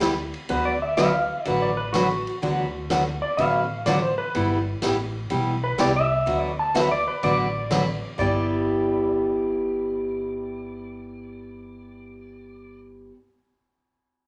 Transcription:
0.00 0.30 D2 medium
0.00 0.13 G3 medium
0.00 0.13 B3 medium
0.00 0.13 E4 medium
0.00 0.14 G4 medium
0.00 snare medium
0.00 hi-hat pedal medium
0.00 ride medium
0.34 ride soft
0.49 1.27 D2 medium
0.49 0.72 D3 medium
0.49 0.72 F#3 medium
0.49 0.72 B3 medium
0.49 0.73 F#4 medium
0.49 0.65 B4 medium
0.49 0.73 B4 medium
0.49 ride medium
0.65 0.81 D5 medium
0.82 0.97 E5 medium
0.97 1.09 D3 medium
0.97 1.10 F#3 medium
0.97 1.10 B3 medium
0.97 1.10 F#4 medium
0.97 1.10 B4 medium
0.97 1.46 F5 medium
0.97 snare medium
0.97 hi-hat pedal medium
0.97 ride medium
1.45 2.24 A1 medium
1.45 1.69 D3 medium
1.45 1.69 F#3 medium
1.45 1.69 B3 medium
1.45 1.69 F#4 medium
1.45 1.70 B4 medium
1.45 1.59 D5 medium
1.45 ride medium
1.62 1.77 D5 medium
1.77 1.93 B4 medium
1.93 2.06 D3 medium
1.93 2.07 F#3 medium
1.93 2.07 B3 medium
1.93 2.87 F#4 medium
1.93 2.07 F#4 medium
1.93 2.07 B4 medium
1.93 snare medium
1.93 hi-hat pedal medium
1.93 ride medium
2.27 ride soft
2.42 3.19 D2 medium
2.42 2.65 D3 medium
2.42 2.66 F#3 medium
2.42 2.66 B3 medium
2.42 2.66 F#4 medium
2.42 2.66 B4 medium
2.42 ride medium
2.90 3.02 D3 medium
2.90 3.03 F#3 medium
2.90 3.03 B3 medium
2.90 3.03 F#4 medium
2.90 3.03 B4 medium
2.90 snare medium
2.90 hi-hat pedal medium
2.90 ride medium
3.22 3.38 D5 medium
3.37 4.15 A1 medium
3.37 3.61 D3 medium
3.37 3.62 F#3 medium
3.37 3.62 B3 medium
3.37 3.62 F#4 medium
3.37 3.62 B4 medium
3.37 3.84 F5 medium
3.37 ride medium
3.86 3.99 D3 medium
3.86 3.99 F#3 medium
3.86 3.99 B3 medium
3.86 3.99 F#4 medium
3.86 4.00 B4 medium
3.86 4.02 D5 medium
3.86 snare medium
3.86 hi-hat pedal medium
3.86 ride medium
4.02 4.18 C5 medium
4.18 4.44 B4 loud
4.35 4.73 G1 medium
4.35 4.58 G3 medium
4.35 4.58 B3 medium
4.35 4.58 E4 medium
4.35 4.58 G4 medium
4.35 ride medium
4.82 5.24 A1 medium
4.82 4.95 G3 medium
4.82 4.95 B3 medium
4.82 4.96 E4 medium
4.82 4.96 G4 medium
4.82 snare medium
4.82 hi-hat pedal medium
4.82 ride medium
5.30 5.72 B1 medium
5.30 5.54 G3 medium
5.30 5.54 B3 medium
5.30 5.54 E4 medium
5.30 5.54 G4 medium
5.30 ride medium
5.64 5.79 B4 medium
5.78 6.20 C2 medium
5.78 5.91 G3 medium
5.78 5.91 B3 medium
5.78 5.91 E4 medium
5.78 5.91 G4 medium
5.78 5.95 D5 medium
5.78 snare medium
5.78 hi-hat pedal medium
5.78 ride medium
5.96 6.40 E5 medium
6.26 7.04 D2 medium
6.26 6.50 D3 medium
6.26 6.50 F#3 medium
6.26 6.50 B3 medium
6.26 6.50 F#4 medium
6.26 6.50 B4 medium
6.26 ride medium
6.40 6.58 D5 medium
6.59 6.75 A5 medium
6.74 6.87 D3 medium
6.74 6.87 F#3 medium
6.74 6.87 B3 medium
6.74 6.87 F#4 medium
6.74 6.88 B4 medium
6.74 6.91 E5 medium
6.74 snare medium
6.74 hi-hat pedal medium
6.74 ride medium
6.91 7.07 D5 medium
7.08 7.23 B4 medium
7.23 8.00 A1 medium
7.23 7.46 D3 medium
7.23 7.46 F#3 medium
7.23 7.46 B3 medium
7.23 7.47 F#4 medium
7.23 7.47 B4 medium
7.23 8.16 D5 medium
7.23 ride medium
7.71 7.83 D3 medium
7.71 7.83 F#3 medium
7.71 7.83 B3 medium
7.71 7.83 F#4 medium
7.71 7.84 B4 medium
7.71 snare medium
7.71 hi-hat pedal medium
7.71 ride medium
8.18 13.09 G1 medium
8.18 13.11 G3 medium
8.18 13.12 B3 medium
8.18 13.14 E4 medium
8.18 13.14 G4 medium
8.18 12.79 D5 medium
8.18 kick loud

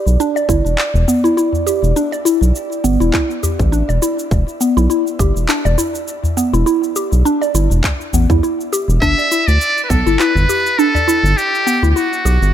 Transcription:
0.00 0.18 G4 medium
0.00 12.54 D5 medium
0.07 0.17 B1 medium
0.07 cabasa soft
0.20 0.34 D4 loud
0.20 cabasa soft
0.36 0.48 D5 medium
0.36 cabasa soft
0.49 0.62 G1 loud
0.49 0.64 E4 medium
0.49 kick medium
0.49 cabasa medium
0.65 0.76 E1 medium
0.65 cabasa soft
0.78 clap medium
0.78 cabasa soft
0.94 1.05 E1 loud
0.94 udu medium
0.94 cabasa soft
1.08 1.23 B3 medium
1.08 cabasa medium
1.24 1.36 E4 medium
1.24 cabasa soft
1.37 1.53 E4 medium
1.37 cabasa soft
1.53 udu medium
1.53 cabasa soft
1.67 1.95 G4 medium
1.67 cabasa medium
1.83 1.94 E1 medium
1.83 cabasa soft
1.96 2.11 D4 loud
1.96 cabasa soft
2.12 2.25 D5 medium
2.12 cabasa soft
2.25 2.41 E4 medium
2.25 cabasa medium
2.42 2.52 B1 medium
2.42 cabasa soft
2.56 cabasa soft
2.72 cabasa soft
2.84 2.98 G1 medium
2.84 3.00 B3 medium
2.84 cabasa medium
3.00 3.11 E1 medium
3.00 3.12 E4 medium
3.00 cabasa soft
3.14 3.29 E4 medium
3.14 kick loud
3.14 clap medium
3.14 cabasa soft
3.31 cabasa soft
3.43 3.71 G4 medium
3.43 udu medium
3.43 cabasa medium
3.59 3.83 A1 loud
3.59 kick loud
3.59 cabasa soft
3.72 3.87 D4 medium
3.72 cabasa soft
3.89 4.00 E1 medium
3.89 4.01 D5 medium
3.89 cabasa soft
4.02 4.18 E4 medium
4.02 cabasa medium
4.19 cabasa soft
4.31 4.45 E1 loud
4.31 kick loud
4.31 cabasa soft
4.48 cabasa soft
4.61 4.76 B3 medium
4.61 cabasa medium
4.77 4.88 B1 medium
4.77 4.89 E4 medium
4.77 cabasa soft
4.90 5.05 E4 medium
4.90 cabasa soft
5.07 cabasa soft
5.19 5.33 G1 medium
5.19 5.48 G4 medium
5.19 kick loud
5.19 cabasa medium
5.36 5.47 E1 medium
5.36 cabasa soft
5.49 5.64 D4 loud
5.49 clap medium
5.49 cabasa soft
5.65 5.76 E1 loud
5.65 5.78 D5 medium
5.65 udu medium
5.65 cabasa soft
5.78 5.94 E4 medium
5.78 cabasa medium
5.95 cabasa soft
6.08 cabasa soft
6.24 udu medium
6.24 cabasa soft
6.37 6.53 B3 medium
6.37 cabasa medium
6.53 6.64 E1 loud
6.53 6.65 E4 medium
6.53 cabasa soft
6.66 6.82 E4 medium
6.66 cabasa soft
6.83 cabasa soft
6.96 7.24 G4 medium
6.96 cabasa medium
7.12 7.23 B1 medium
7.12 cabasa soft
7.25 7.40 D4 loud
7.25 cabasa soft
7.42 7.54 D5 medium
7.42 cabasa soft
7.55 7.68 G1 medium
7.55 7.70 E4 medium
7.55 cabasa medium
7.71 7.81 E1 medium
7.71 udu medium
7.71 cabasa soft
7.84 kick loud
7.84 clap medium
7.84 cabasa soft
8.01 cabasa soft
8.13 8.27 A1 medium
8.13 8.29 B3 medium
8.13 udu medium
8.13 cabasa medium
8.30 8.40 E2 medium
8.30 8.42 E4 medium
8.30 kick loud
8.30 cabasa soft
8.43 8.59 E4 medium
8.43 cabasa soft
8.61 cabasa soft
8.73 9.01 G4 medium
8.73 cabasa medium
8.88 8.99 E1 medium
8.88 cabasa soft
9.01 9.15 G1 loud
9.01 9.17 D4 loud
9.01 9.49 E5 loud
9.01 kick loud
9.01 cabasa soft
9.18 9.31 D5 medium
9.18 cabasa soft
9.32 9.47 E4 medium
9.32 cabasa medium
9.47 9.58 D2 medium
9.47 9.83 D5 loud
9.47 cabasa soft
9.61 cabasa soft
9.78 cabasa soft
9.84 9.91 B4 medium
9.89 10.03 B1 medium
9.89 10.06 B3 medium
9.89 10.21 A4 medium
9.89 kick loud
9.89 cabasa medium
10.06 10.17 G1 medium
10.06 10.19 E4 medium
10.06 cabasa soft
10.19 10.35 E4 medium
10.19 10.80 B4 loud
10.19 clap medium
10.19 cabasa soft
10.35 10.46 G1 loud
10.35 udu medium
10.35 cabasa soft
10.49 10.77 G4 medium
10.49 cabasa medium
10.66 cabasa soft
10.78 10.93 D4 medium
10.78 11.38 A4 medium
10.78 cabasa soft
10.95 11.07 D5 medium
10.95 udu medium
10.95 cabasa soft
11.08 11.23 E4 medium
11.08 cabasa medium
11.23 11.34 G1 medium
11.23 cabasa soft
11.37 11.90 G4 loud
11.37 cabasa soft
11.55 cabasa soft
11.67 11.82 B3 medium
11.67 cabasa medium
11.83 11.94 D2 medium
11.83 11.95 E4 medium
11.83 cabasa soft
11.91 11.97 G4 medium
11.95 12.12 E4 medium
11.95 12.54 F#4 medium
11.95 cabasa soft
12.13 cabasa soft
12.25 12.39 B1 medium
12.25 12.53 G4 medium
12.25 cabasa medium
12.42 12.52 G1 medium
12.42 cabasa soft

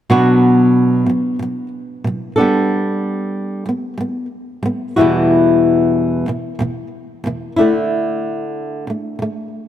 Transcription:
0.10 1.05 B2 medium
0.10 1.07 F#3 medium
0.10 2.39 B3 medium
0.10 2.37 D4 medium
0.10 1.08 F#4 medium
1.06 1.34 B2 soft
1.06 1.35 F#3 soft
1.39 1.66 B2 soft
1.39 1.68 F#3 soft
2.04 2.31 B2 soft
2.04 2.33 F#3 medium
2.36 3.68 B3 soft
2.36 3.67 D4 soft
2.36 3.66 A4 soft
2.41 3.65 G3 soft
3.66 3.93 G3 soft
3.66 3.95 B3 soft
3.98 4.25 G3 soft
3.98 4.27 B3 medium
4.63 4.90 G3 soft
4.63 4.92 B3 medium
4.96 6.27 B2 soft
4.96 6.29 E3 soft
4.96 6.27 G3 soft
4.96 7.56 E4 medium
4.96 6.26 F#4 soft
5.01 6.25 E2 soft
6.26 6.53 E2 soft
6.26 6.54 B2 soft
6.26 6.55 E3 soft
6.59 6.86 E2 soft
6.59 6.87 B2 medium
6.59 6.87 E3 soft
7.24 7.51 E2 soft
7.24 7.52 B2 medium
7.24 7.52 E3 medium
7.56 8.88 A3 soft
7.56 9.68 D4 soft
7.56 8.86 E4 soft
7.61 8.87 D3 soft
8.87 9.14 D3 soft
8.87 9.15 A3 soft
9.19 9.46 D3 soft
9.19 9.47 A3 soft

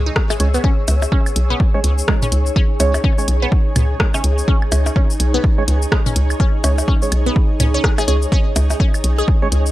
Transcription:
0.00 0.10 C#2 medium
0.00 9.72 G#4 medium
0.00 9.72 C#5 medium
0.00 1.79 E6 medium
0.06 0.09 D#4 medium
0.16 kick loud
0.16 cross-stick loud
0.30 0.32 G#3 medium
0.30 percussion blips medium
0.30 cabasa soft
0.30 claves medium
0.40 0.58 C#2 loud
0.40 0.48 G#3 medium
0.40 0.48 C#4 medium
0.40 0.48 C#5 loud
0.40 closed hi-hat medium
0.54 0.58 B3 medium
0.54 cabasa soft
0.64 0.68 C#4 loud
0.64 9.72 D#4 medium
0.64 kick loud
0.88 1.06 C#2 loud
0.88 closed hi-hat medium
0.88 percussion blips medium
0.88 cabasa medium
1.02 percussion blips medium
1.02 cabasa soft
1.12 1.18 C#4 medium
1.12 kick loud
1.26 cabasa soft
1.26 claves medium
1.36 1.54 B1 loud
1.36 closed hi-hat medium
1.50 1.53 B3 loud
1.60 kick loud
1.74 1.80 G#3 loud
1.74 1.80 C#4 medium
1.74 1.80 C#5 loud
1.74 5.63 G#5 medium
1.84 2.02 C#2 medium
1.84 closed hi-hat medium
1.98 cabasa soft
2.08 2.10 G#3 medium
2.08 kick loud
2.08 cross-stick loud
2.08 claves medium
2.22 2.25 C#4 medium
2.22 mid tom medium
2.22 cabasa soft
2.32 2.50 C#2 medium
2.32 closed hi-hat medium
2.46 cabasa soft
2.56 2.60 C#4 medium
2.56 kick loud
2.80 2.98 C#2 loud
2.80 2.93 G#3 medium
2.80 2.93 C#4 medium
2.80 2.93 C#5 loud
2.80 closed hi-hat loud
2.80 percussion blips medium
2.80 cabasa medium
2.94 percussion blips medium
2.94 cabasa soft
2.94 claves medium
3.04 3.10 C#4 medium
3.04 kick loud
3.18 3.27 G#3 medium
3.18 3.27 C#4 medium
3.18 3.27 C#5 medium
3.18 cabasa soft
3.28 3.46 B1 loud
3.28 closed hi-hat medium
3.42 3.45 B3 loud
3.52 kick loud
3.76 3.94 C#2 medium
3.76 closed hi-hat medium
3.76 mid tom medium
3.76 cabasa soft
3.76 claves medium
4.00 4.02 G#3 medium
4.00 kick loud
4.00 cross-stick loud
4.14 4.17 C#4 medium
4.14 percussion blips medium
4.14 cabasa medium
4.24 4.42 C#2 medium
4.24 closed hi-hat medium
4.38 cabasa soft
4.48 4.52 C#4 loud
4.48 kick loud
4.62 claves medium
4.72 4.90 C#2 loud
4.72 closed hi-hat loud
4.72 percussion blips medium
4.72 cabasa medium
4.86 percussion blips medium
4.86 cabasa soft
4.96 5.02 C#4 medium
4.96 kick loud
5.10 cabasa soft
5.20 5.38 B1 medium
5.20 closed hi-hat medium
5.34 5.37 B3 loud
5.44 kick loud
5.44 claves medium
5.58 5.64 G#3 medium
5.58 5.64 C#4 medium
5.58 5.64 C#5 loud
5.58 9.47 D#5 medium
5.68 5.86 C#2 medium
5.68 closed hi-hat medium
5.82 cabasa soft
5.92 5.94 G#3 medium
5.92 kick loud
5.92 cross-stick loud
6.06 6.09 C#4 medium
6.06 mid tom medium
6.06 cabasa soft
6.16 6.34 C#2 medium
6.16 closed hi-hat loud
6.30 cabasa soft
6.30 claves medium
6.40 6.44 C#4 loud
6.40 kick loud
6.64 6.82 C#2 loud
6.64 6.77 G#3 medium
6.64 6.77 C#4 medium
6.64 6.77 C#5 loud
6.64 closed hi-hat loud
6.64 percussion blips medium
6.64 cabasa soft
6.78 percussion blips medium
6.78 cabasa soft
6.88 6.94 C#4 medium
6.88 kick loud
7.02 7.11 G#3 medium
7.02 7.11 C#4 medium
7.02 7.11 C#5 medium
7.02 cabasa soft
7.12 7.30 B1 medium
7.12 closed hi-hat medium
7.12 claves medium
7.26 7.29 B3 loud
7.36 kick loud
7.60 7.78 C#2 medium
7.60 7.64 C#4 medium
7.60 closed hi-hat loud
7.60 mid tom medium
7.60 cabasa soft
7.74 7.78 C#4 loud
7.84 7.86 G#4 medium
7.84 kick loud
7.84 cross-stick loud
7.98 8.01 G#4 loud
7.98 percussion blips medium
7.98 cabasa soft
7.98 claves medium
8.08 8.26 C#2 loud
8.08 8.16 G#3 medium
8.08 8.16 C#4 medium
8.08 8.14 G#4 medium
8.08 8.16 C#5 loud
8.08 closed hi-hat medium
8.22 cabasa soft
8.32 8.36 C#4 loud
8.32 kick loud
8.56 8.74 C#2 loud
8.56 closed hi-hat loud
8.56 percussion blips medium
8.56 cabasa soft
8.70 percussion blips medium
8.70 cabasa soft
8.80 8.86 C#4 medium
8.80 kick loud
8.94 cabasa soft
8.94 claves medium
9.04 9.22 B1 medium
9.04 closed hi-hat medium
9.18 9.22 G#4 loud
9.28 kick loud
9.42 9.48 G#3 loud
9.42 9.48 C#4 medium
9.42 9.48 C#5 loud
9.42 9.72 G#5 medium
9.52 9.70 C#2 medium
9.52 closed hi-hat medium
9.66 cabasa soft

